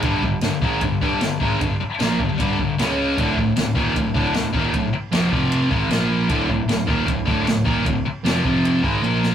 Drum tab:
RD |b-b-b-b-|b-b-b-b-|b-b-b-b-|b-b-b-b-|
SD |--o---o-|--o---o-|--o---o-|--o---o-|
T1 |--------|--------|--------|--------|
BD |oo-ooo-o|o--ooo--|oo-ooo-o|o--o-o--|

RD |b-b-b-b-|b-b-b---|
SD |--o---o-|--o----o|
T1 |--------|------o-|
BD |oo-ooo-o|o--o-o--|